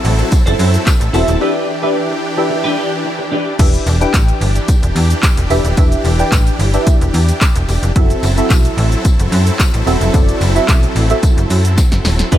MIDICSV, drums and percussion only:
0, 0, Header, 1, 2, 480
1, 0, Start_track
1, 0, Key_signature, 1, "minor"
1, 0, Tempo, 545455
1, 1243, Time_signature, 4, 2, 24, 8
1, 10895, End_track
2, 0, Start_track
2, 0, Title_t, "Drums"
2, 42, Note_on_c, 9, 46, 85
2, 42, Note_on_c, 9, 82, 61
2, 130, Note_off_c, 9, 46, 0
2, 130, Note_off_c, 9, 82, 0
2, 166, Note_on_c, 9, 42, 50
2, 166, Note_on_c, 9, 82, 65
2, 254, Note_off_c, 9, 42, 0
2, 254, Note_off_c, 9, 82, 0
2, 280, Note_on_c, 9, 42, 92
2, 280, Note_on_c, 9, 82, 90
2, 282, Note_on_c, 9, 54, 57
2, 283, Note_on_c, 9, 36, 125
2, 368, Note_off_c, 9, 42, 0
2, 368, Note_off_c, 9, 82, 0
2, 370, Note_off_c, 9, 54, 0
2, 371, Note_off_c, 9, 36, 0
2, 412, Note_on_c, 9, 42, 58
2, 412, Note_on_c, 9, 82, 55
2, 500, Note_off_c, 9, 42, 0
2, 500, Note_off_c, 9, 82, 0
2, 523, Note_on_c, 9, 46, 96
2, 523, Note_on_c, 9, 54, 52
2, 523, Note_on_c, 9, 82, 68
2, 611, Note_off_c, 9, 46, 0
2, 611, Note_off_c, 9, 54, 0
2, 611, Note_off_c, 9, 82, 0
2, 651, Note_on_c, 9, 42, 64
2, 651, Note_on_c, 9, 82, 87
2, 739, Note_off_c, 9, 42, 0
2, 739, Note_off_c, 9, 82, 0
2, 760, Note_on_c, 9, 39, 127
2, 763, Note_on_c, 9, 42, 67
2, 763, Note_on_c, 9, 82, 69
2, 764, Note_on_c, 9, 36, 115
2, 764, Note_on_c, 9, 54, 88
2, 848, Note_off_c, 9, 39, 0
2, 851, Note_off_c, 9, 42, 0
2, 851, Note_off_c, 9, 82, 0
2, 852, Note_off_c, 9, 36, 0
2, 852, Note_off_c, 9, 54, 0
2, 889, Note_on_c, 9, 42, 63
2, 889, Note_on_c, 9, 82, 60
2, 977, Note_off_c, 9, 42, 0
2, 977, Note_off_c, 9, 82, 0
2, 1003, Note_on_c, 9, 46, 71
2, 1003, Note_on_c, 9, 82, 51
2, 1005, Note_on_c, 9, 54, 64
2, 1091, Note_off_c, 9, 46, 0
2, 1091, Note_off_c, 9, 82, 0
2, 1093, Note_off_c, 9, 54, 0
2, 1127, Note_on_c, 9, 42, 62
2, 1127, Note_on_c, 9, 82, 85
2, 1215, Note_off_c, 9, 42, 0
2, 1215, Note_off_c, 9, 82, 0
2, 3161, Note_on_c, 9, 54, 38
2, 3162, Note_on_c, 9, 36, 122
2, 3162, Note_on_c, 9, 42, 80
2, 3162, Note_on_c, 9, 49, 111
2, 3162, Note_on_c, 9, 82, 76
2, 3249, Note_off_c, 9, 54, 0
2, 3250, Note_off_c, 9, 36, 0
2, 3250, Note_off_c, 9, 42, 0
2, 3250, Note_off_c, 9, 49, 0
2, 3250, Note_off_c, 9, 82, 0
2, 3290, Note_on_c, 9, 42, 54
2, 3290, Note_on_c, 9, 82, 53
2, 3378, Note_off_c, 9, 42, 0
2, 3378, Note_off_c, 9, 82, 0
2, 3402, Note_on_c, 9, 54, 55
2, 3403, Note_on_c, 9, 46, 70
2, 3403, Note_on_c, 9, 82, 48
2, 3490, Note_off_c, 9, 54, 0
2, 3491, Note_off_c, 9, 46, 0
2, 3491, Note_off_c, 9, 82, 0
2, 3532, Note_on_c, 9, 42, 50
2, 3532, Note_on_c, 9, 82, 70
2, 3620, Note_off_c, 9, 42, 0
2, 3620, Note_off_c, 9, 82, 0
2, 3642, Note_on_c, 9, 36, 127
2, 3642, Note_on_c, 9, 39, 116
2, 3642, Note_on_c, 9, 54, 89
2, 3644, Note_on_c, 9, 42, 78
2, 3644, Note_on_c, 9, 82, 82
2, 3730, Note_off_c, 9, 36, 0
2, 3730, Note_off_c, 9, 39, 0
2, 3730, Note_off_c, 9, 54, 0
2, 3732, Note_off_c, 9, 42, 0
2, 3732, Note_off_c, 9, 82, 0
2, 3771, Note_on_c, 9, 42, 55
2, 3771, Note_on_c, 9, 82, 54
2, 3859, Note_off_c, 9, 42, 0
2, 3859, Note_off_c, 9, 82, 0
2, 3883, Note_on_c, 9, 54, 37
2, 3885, Note_on_c, 9, 46, 87
2, 3885, Note_on_c, 9, 82, 60
2, 3971, Note_off_c, 9, 54, 0
2, 3973, Note_off_c, 9, 46, 0
2, 3973, Note_off_c, 9, 82, 0
2, 4008, Note_on_c, 9, 42, 47
2, 4008, Note_on_c, 9, 82, 66
2, 4096, Note_off_c, 9, 42, 0
2, 4096, Note_off_c, 9, 82, 0
2, 4121, Note_on_c, 9, 42, 88
2, 4121, Note_on_c, 9, 82, 88
2, 4123, Note_on_c, 9, 36, 120
2, 4123, Note_on_c, 9, 54, 55
2, 4209, Note_off_c, 9, 42, 0
2, 4209, Note_off_c, 9, 82, 0
2, 4211, Note_off_c, 9, 36, 0
2, 4211, Note_off_c, 9, 54, 0
2, 4251, Note_on_c, 9, 42, 56
2, 4251, Note_on_c, 9, 82, 56
2, 4339, Note_off_c, 9, 42, 0
2, 4339, Note_off_c, 9, 82, 0
2, 4363, Note_on_c, 9, 46, 92
2, 4363, Note_on_c, 9, 82, 70
2, 4365, Note_on_c, 9, 54, 51
2, 4451, Note_off_c, 9, 46, 0
2, 4451, Note_off_c, 9, 82, 0
2, 4453, Note_off_c, 9, 54, 0
2, 4491, Note_on_c, 9, 42, 62
2, 4491, Note_on_c, 9, 82, 91
2, 4579, Note_off_c, 9, 42, 0
2, 4579, Note_off_c, 9, 82, 0
2, 4600, Note_on_c, 9, 39, 118
2, 4603, Note_on_c, 9, 42, 69
2, 4603, Note_on_c, 9, 54, 93
2, 4603, Note_on_c, 9, 82, 68
2, 4604, Note_on_c, 9, 36, 122
2, 4688, Note_off_c, 9, 39, 0
2, 4691, Note_off_c, 9, 42, 0
2, 4691, Note_off_c, 9, 54, 0
2, 4691, Note_off_c, 9, 82, 0
2, 4692, Note_off_c, 9, 36, 0
2, 4729, Note_on_c, 9, 42, 63
2, 4729, Note_on_c, 9, 82, 62
2, 4817, Note_off_c, 9, 42, 0
2, 4817, Note_off_c, 9, 82, 0
2, 4843, Note_on_c, 9, 46, 76
2, 4843, Note_on_c, 9, 82, 52
2, 4844, Note_on_c, 9, 54, 62
2, 4931, Note_off_c, 9, 46, 0
2, 4931, Note_off_c, 9, 82, 0
2, 4932, Note_off_c, 9, 54, 0
2, 4969, Note_on_c, 9, 42, 62
2, 4969, Note_on_c, 9, 82, 85
2, 5057, Note_off_c, 9, 42, 0
2, 5057, Note_off_c, 9, 82, 0
2, 5080, Note_on_c, 9, 42, 77
2, 5080, Note_on_c, 9, 82, 75
2, 5082, Note_on_c, 9, 36, 114
2, 5083, Note_on_c, 9, 54, 36
2, 5168, Note_off_c, 9, 42, 0
2, 5168, Note_off_c, 9, 82, 0
2, 5170, Note_off_c, 9, 36, 0
2, 5171, Note_off_c, 9, 54, 0
2, 5210, Note_on_c, 9, 42, 54
2, 5210, Note_on_c, 9, 82, 53
2, 5298, Note_off_c, 9, 42, 0
2, 5298, Note_off_c, 9, 82, 0
2, 5320, Note_on_c, 9, 54, 54
2, 5322, Note_on_c, 9, 46, 70
2, 5322, Note_on_c, 9, 82, 50
2, 5408, Note_off_c, 9, 54, 0
2, 5410, Note_off_c, 9, 46, 0
2, 5410, Note_off_c, 9, 82, 0
2, 5451, Note_on_c, 9, 42, 53
2, 5451, Note_on_c, 9, 82, 73
2, 5539, Note_off_c, 9, 42, 0
2, 5539, Note_off_c, 9, 82, 0
2, 5561, Note_on_c, 9, 39, 112
2, 5562, Note_on_c, 9, 36, 127
2, 5562, Note_on_c, 9, 54, 88
2, 5563, Note_on_c, 9, 42, 79
2, 5563, Note_on_c, 9, 82, 79
2, 5649, Note_off_c, 9, 39, 0
2, 5650, Note_off_c, 9, 36, 0
2, 5650, Note_off_c, 9, 54, 0
2, 5651, Note_off_c, 9, 42, 0
2, 5651, Note_off_c, 9, 82, 0
2, 5692, Note_on_c, 9, 42, 54
2, 5692, Note_on_c, 9, 82, 53
2, 5780, Note_off_c, 9, 42, 0
2, 5780, Note_off_c, 9, 82, 0
2, 5804, Note_on_c, 9, 46, 90
2, 5804, Note_on_c, 9, 54, 38
2, 5804, Note_on_c, 9, 82, 59
2, 5892, Note_off_c, 9, 46, 0
2, 5892, Note_off_c, 9, 54, 0
2, 5892, Note_off_c, 9, 82, 0
2, 5929, Note_on_c, 9, 42, 51
2, 5929, Note_on_c, 9, 82, 68
2, 6017, Note_off_c, 9, 42, 0
2, 6017, Note_off_c, 9, 82, 0
2, 6042, Note_on_c, 9, 54, 55
2, 6043, Note_on_c, 9, 42, 88
2, 6043, Note_on_c, 9, 82, 89
2, 6044, Note_on_c, 9, 36, 124
2, 6130, Note_off_c, 9, 54, 0
2, 6131, Note_off_c, 9, 42, 0
2, 6131, Note_off_c, 9, 82, 0
2, 6132, Note_off_c, 9, 36, 0
2, 6173, Note_on_c, 9, 42, 59
2, 6173, Note_on_c, 9, 82, 54
2, 6261, Note_off_c, 9, 42, 0
2, 6261, Note_off_c, 9, 82, 0
2, 6284, Note_on_c, 9, 46, 97
2, 6284, Note_on_c, 9, 54, 52
2, 6284, Note_on_c, 9, 82, 69
2, 6372, Note_off_c, 9, 46, 0
2, 6372, Note_off_c, 9, 54, 0
2, 6372, Note_off_c, 9, 82, 0
2, 6411, Note_on_c, 9, 42, 61
2, 6411, Note_on_c, 9, 82, 90
2, 6499, Note_off_c, 9, 42, 0
2, 6499, Note_off_c, 9, 82, 0
2, 6522, Note_on_c, 9, 39, 124
2, 6523, Note_on_c, 9, 54, 92
2, 6525, Note_on_c, 9, 36, 116
2, 6525, Note_on_c, 9, 42, 65
2, 6525, Note_on_c, 9, 82, 68
2, 6610, Note_off_c, 9, 39, 0
2, 6611, Note_off_c, 9, 54, 0
2, 6613, Note_off_c, 9, 36, 0
2, 6613, Note_off_c, 9, 42, 0
2, 6613, Note_off_c, 9, 82, 0
2, 6649, Note_on_c, 9, 42, 62
2, 6649, Note_on_c, 9, 82, 61
2, 6737, Note_off_c, 9, 42, 0
2, 6737, Note_off_c, 9, 82, 0
2, 6764, Note_on_c, 9, 46, 71
2, 6764, Note_on_c, 9, 82, 54
2, 6765, Note_on_c, 9, 54, 61
2, 6852, Note_off_c, 9, 46, 0
2, 6852, Note_off_c, 9, 82, 0
2, 6853, Note_off_c, 9, 54, 0
2, 6890, Note_on_c, 9, 42, 63
2, 6890, Note_on_c, 9, 82, 87
2, 6978, Note_off_c, 9, 42, 0
2, 6978, Note_off_c, 9, 82, 0
2, 7003, Note_on_c, 9, 36, 121
2, 7003, Note_on_c, 9, 42, 79
2, 7003, Note_on_c, 9, 82, 77
2, 7091, Note_off_c, 9, 36, 0
2, 7091, Note_off_c, 9, 42, 0
2, 7091, Note_off_c, 9, 82, 0
2, 7130, Note_on_c, 9, 42, 53
2, 7130, Note_on_c, 9, 82, 54
2, 7218, Note_off_c, 9, 42, 0
2, 7218, Note_off_c, 9, 82, 0
2, 7242, Note_on_c, 9, 46, 73
2, 7242, Note_on_c, 9, 54, 54
2, 7242, Note_on_c, 9, 82, 49
2, 7330, Note_off_c, 9, 46, 0
2, 7330, Note_off_c, 9, 54, 0
2, 7330, Note_off_c, 9, 82, 0
2, 7371, Note_on_c, 9, 42, 54
2, 7371, Note_on_c, 9, 82, 73
2, 7459, Note_off_c, 9, 42, 0
2, 7459, Note_off_c, 9, 82, 0
2, 7482, Note_on_c, 9, 39, 116
2, 7482, Note_on_c, 9, 54, 91
2, 7483, Note_on_c, 9, 36, 127
2, 7484, Note_on_c, 9, 42, 81
2, 7484, Note_on_c, 9, 82, 78
2, 7570, Note_off_c, 9, 39, 0
2, 7570, Note_off_c, 9, 54, 0
2, 7571, Note_off_c, 9, 36, 0
2, 7572, Note_off_c, 9, 42, 0
2, 7572, Note_off_c, 9, 82, 0
2, 7612, Note_on_c, 9, 42, 52
2, 7612, Note_on_c, 9, 82, 57
2, 7700, Note_off_c, 9, 42, 0
2, 7700, Note_off_c, 9, 82, 0
2, 7725, Note_on_c, 9, 46, 85
2, 7725, Note_on_c, 9, 82, 62
2, 7813, Note_off_c, 9, 46, 0
2, 7813, Note_off_c, 9, 82, 0
2, 7849, Note_on_c, 9, 42, 50
2, 7849, Note_on_c, 9, 82, 67
2, 7937, Note_off_c, 9, 42, 0
2, 7937, Note_off_c, 9, 82, 0
2, 7962, Note_on_c, 9, 42, 88
2, 7962, Note_on_c, 9, 82, 93
2, 7964, Note_on_c, 9, 36, 118
2, 7964, Note_on_c, 9, 54, 56
2, 8050, Note_off_c, 9, 42, 0
2, 8050, Note_off_c, 9, 82, 0
2, 8052, Note_off_c, 9, 36, 0
2, 8052, Note_off_c, 9, 54, 0
2, 8092, Note_on_c, 9, 42, 56
2, 8092, Note_on_c, 9, 82, 58
2, 8180, Note_off_c, 9, 42, 0
2, 8180, Note_off_c, 9, 82, 0
2, 8204, Note_on_c, 9, 46, 91
2, 8204, Note_on_c, 9, 82, 67
2, 8205, Note_on_c, 9, 54, 50
2, 8292, Note_off_c, 9, 46, 0
2, 8292, Note_off_c, 9, 82, 0
2, 8293, Note_off_c, 9, 54, 0
2, 8331, Note_on_c, 9, 42, 65
2, 8331, Note_on_c, 9, 82, 88
2, 8419, Note_off_c, 9, 42, 0
2, 8419, Note_off_c, 9, 82, 0
2, 8442, Note_on_c, 9, 39, 120
2, 8444, Note_on_c, 9, 54, 93
2, 8445, Note_on_c, 9, 36, 113
2, 8445, Note_on_c, 9, 42, 70
2, 8445, Note_on_c, 9, 82, 68
2, 8530, Note_off_c, 9, 39, 0
2, 8532, Note_off_c, 9, 54, 0
2, 8533, Note_off_c, 9, 36, 0
2, 8533, Note_off_c, 9, 42, 0
2, 8533, Note_off_c, 9, 82, 0
2, 8571, Note_on_c, 9, 42, 59
2, 8571, Note_on_c, 9, 82, 61
2, 8659, Note_off_c, 9, 42, 0
2, 8659, Note_off_c, 9, 82, 0
2, 8685, Note_on_c, 9, 54, 60
2, 8686, Note_on_c, 9, 46, 71
2, 8686, Note_on_c, 9, 82, 53
2, 8773, Note_off_c, 9, 54, 0
2, 8774, Note_off_c, 9, 46, 0
2, 8774, Note_off_c, 9, 82, 0
2, 8811, Note_on_c, 9, 42, 61
2, 8811, Note_on_c, 9, 82, 85
2, 8899, Note_off_c, 9, 42, 0
2, 8899, Note_off_c, 9, 82, 0
2, 8921, Note_on_c, 9, 54, 38
2, 8924, Note_on_c, 9, 36, 119
2, 8924, Note_on_c, 9, 42, 79
2, 8924, Note_on_c, 9, 82, 73
2, 9009, Note_off_c, 9, 54, 0
2, 9012, Note_off_c, 9, 36, 0
2, 9012, Note_off_c, 9, 42, 0
2, 9012, Note_off_c, 9, 82, 0
2, 9052, Note_on_c, 9, 42, 54
2, 9052, Note_on_c, 9, 82, 53
2, 9140, Note_off_c, 9, 42, 0
2, 9140, Note_off_c, 9, 82, 0
2, 9161, Note_on_c, 9, 54, 54
2, 9164, Note_on_c, 9, 46, 72
2, 9164, Note_on_c, 9, 82, 52
2, 9249, Note_off_c, 9, 54, 0
2, 9252, Note_off_c, 9, 46, 0
2, 9252, Note_off_c, 9, 82, 0
2, 9292, Note_on_c, 9, 42, 52
2, 9292, Note_on_c, 9, 82, 73
2, 9380, Note_off_c, 9, 42, 0
2, 9380, Note_off_c, 9, 82, 0
2, 9402, Note_on_c, 9, 39, 117
2, 9402, Note_on_c, 9, 54, 87
2, 9403, Note_on_c, 9, 36, 127
2, 9404, Note_on_c, 9, 42, 80
2, 9404, Note_on_c, 9, 82, 81
2, 9490, Note_off_c, 9, 39, 0
2, 9490, Note_off_c, 9, 54, 0
2, 9491, Note_off_c, 9, 36, 0
2, 9492, Note_off_c, 9, 42, 0
2, 9492, Note_off_c, 9, 82, 0
2, 9531, Note_on_c, 9, 42, 53
2, 9531, Note_on_c, 9, 82, 53
2, 9619, Note_off_c, 9, 42, 0
2, 9619, Note_off_c, 9, 82, 0
2, 9643, Note_on_c, 9, 46, 87
2, 9643, Note_on_c, 9, 82, 61
2, 9644, Note_on_c, 9, 54, 38
2, 9731, Note_off_c, 9, 46, 0
2, 9731, Note_off_c, 9, 82, 0
2, 9732, Note_off_c, 9, 54, 0
2, 9768, Note_on_c, 9, 42, 48
2, 9768, Note_on_c, 9, 82, 67
2, 9856, Note_off_c, 9, 42, 0
2, 9856, Note_off_c, 9, 82, 0
2, 9882, Note_on_c, 9, 42, 85
2, 9882, Note_on_c, 9, 82, 85
2, 9883, Note_on_c, 9, 54, 57
2, 9884, Note_on_c, 9, 36, 121
2, 9970, Note_off_c, 9, 42, 0
2, 9970, Note_off_c, 9, 82, 0
2, 9971, Note_off_c, 9, 54, 0
2, 9972, Note_off_c, 9, 36, 0
2, 10012, Note_on_c, 9, 42, 56
2, 10012, Note_on_c, 9, 82, 54
2, 10100, Note_off_c, 9, 42, 0
2, 10100, Note_off_c, 9, 82, 0
2, 10123, Note_on_c, 9, 46, 97
2, 10123, Note_on_c, 9, 82, 68
2, 10125, Note_on_c, 9, 54, 54
2, 10211, Note_off_c, 9, 46, 0
2, 10211, Note_off_c, 9, 82, 0
2, 10213, Note_off_c, 9, 54, 0
2, 10250, Note_on_c, 9, 42, 64
2, 10250, Note_on_c, 9, 82, 90
2, 10338, Note_off_c, 9, 42, 0
2, 10338, Note_off_c, 9, 82, 0
2, 10362, Note_on_c, 9, 38, 63
2, 10364, Note_on_c, 9, 36, 114
2, 10364, Note_on_c, 9, 42, 66
2, 10364, Note_on_c, 9, 54, 88
2, 10364, Note_on_c, 9, 82, 68
2, 10450, Note_off_c, 9, 38, 0
2, 10452, Note_off_c, 9, 36, 0
2, 10452, Note_off_c, 9, 42, 0
2, 10452, Note_off_c, 9, 54, 0
2, 10452, Note_off_c, 9, 82, 0
2, 10488, Note_on_c, 9, 42, 61
2, 10488, Note_on_c, 9, 82, 64
2, 10489, Note_on_c, 9, 38, 73
2, 10576, Note_off_c, 9, 42, 0
2, 10576, Note_off_c, 9, 82, 0
2, 10577, Note_off_c, 9, 38, 0
2, 10603, Note_on_c, 9, 38, 104
2, 10604, Note_on_c, 9, 46, 70
2, 10604, Note_on_c, 9, 82, 51
2, 10606, Note_on_c, 9, 54, 63
2, 10691, Note_off_c, 9, 38, 0
2, 10692, Note_off_c, 9, 46, 0
2, 10692, Note_off_c, 9, 82, 0
2, 10694, Note_off_c, 9, 54, 0
2, 10729, Note_on_c, 9, 38, 101
2, 10729, Note_on_c, 9, 42, 62
2, 10729, Note_on_c, 9, 82, 85
2, 10817, Note_off_c, 9, 38, 0
2, 10817, Note_off_c, 9, 42, 0
2, 10817, Note_off_c, 9, 82, 0
2, 10842, Note_on_c, 9, 42, 79
2, 10842, Note_on_c, 9, 82, 77
2, 10843, Note_on_c, 9, 36, 113
2, 10895, Note_off_c, 9, 36, 0
2, 10895, Note_off_c, 9, 42, 0
2, 10895, Note_off_c, 9, 82, 0
2, 10895, End_track
0, 0, End_of_file